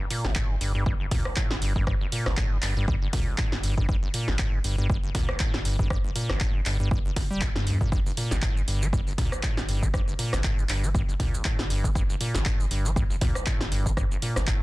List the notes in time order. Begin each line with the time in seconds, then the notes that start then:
0.11 A#2, open hi-hat
0.25 G1, snare
0.35 A2, kick, clap
0.50 G2
0.61 G1 G2, open hi-hat
0.75 G2
0.86 G2, kick
1.00 G1
1.11 D2 A#2, kick, snare, open hi-hat
1.25 G1, cross-stick
1.36 A2, kick, clap
1.51 G1 G2, snare
1.62 G2, open hi-hat
1.76 G2, kick
1.87 G1 G2, kick, cross-stick
2.01 G1
2.12 A#2, open hi-hat
2.26 G1, cross-stick, snare
2.37 A2, kick, clap
2.52 G2
2.62 G1 G2, clap, open hi-hat
2.77 G2
2.88 kick
3.02 G1
3.13 D2 A#2, kick, snare, open hi-hat
3.27 G1
3.38 A2, kick, clap
3.52 G1 G2, snare
3.63 G2, open hi-hat
3.77 G2, kick
3.89 G1 G2, kick
4.03 G1
4.14 A#2, open hi-hat
4.28 G1, snare
4.39 A2, kick, clap
4.53 G2
4.64 G1 G2, open hi-hat
4.78 G2
4.90 kick
5.04 G1
5.15 D2 A#2, kick, snare, open hi-hat
5.29 G1, cross-stick
5.40 A2, kick, clap
5.54 G1 G2, snare
5.65 G2, open hi-hat
5.79 G2, kick
5.90 G1 G2, kick, cross-stick
6.04 G1
6.16 A#2, open hi-hat
6.29 G1, cross-stick, snare
6.40 A2, kick, clap
6.55 G2
6.66 G1 G2, clap, open hi-hat
6.80 G2
6.91 kick
7.05 G1
7.16 G1 G2, kick, snare, open hi-hat
7.30 G3
7.41 G2, kick, clap
7.56 G1 G2, snare
7.67 F2, open hi-hat
7.81 A#2, kick
7.92 G1 G2, kick, shaker
8.06 G1, shaker
8.17 A#2, open hi-hat
8.31 G1, snare, shaker
8.42 A2, kick, clap, shaker
8.56 G2, shaker
8.68 G1 G2, open hi-hat
8.82 G3, shaker
8.93 G2, kick, shaker
9.07 G1, shaker
9.18 D2 A#2, kick, snare, open hi-hat
9.32 G1, cross-stick, shaker
9.43 A2, kick, clap, shaker
9.57 G1 G2, snare, shaker
9.69 G2, open hi-hat
9.82 G3, kick, shaker
9.94 G1 G2, kick, cross-stick, shaker
10.08 G1, shaker
10.19 A#2, open hi-hat
10.33 G1, cross-stick, snare, shaker
10.44 A2, kick, clap, shaker
10.58 G2, shaker
10.69 G1 G2, clap, open hi-hat
10.83 G3, shaker
10.95 G2, kick, shaker
11.09 G1, shaker
11.20 D2 A#2, kick, snare, open hi-hat
11.34 G1, shaker
11.45 A2, kick, clap, shaker
11.59 G1 G2, snare, shaker
11.70 G2, open hi-hat
11.84 G3, kick, shaker
11.95 G1 G2, kick, shaker
12.09 G1, shaker
12.21 A#2, open hi-hat
12.35 G1, snare, shaker
12.45 A2, kick, clap, shaker
12.60 G2, shaker
12.71 G1 G2, open hi-hat
12.85 G3, shaker
12.96 G2, kick, shaker
13.10 G1, shaker
13.21 D2 A#2, kick, snare, open hi-hat
13.35 G1, cross-stick, shaker
13.46 A2, kick, clap, shaker
13.61 G1 G2, snare, shaker
13.72 G2, open hi-hat
13.86 G3, kick, shaker
13.97 G1 G2, kick, cross-stick, shaker
14.11 G1, shaker
14.22 A#2, open hi-hat
14.36 G1, cross-stick, snare, shaker
14.47 A2, kick, clap, shaker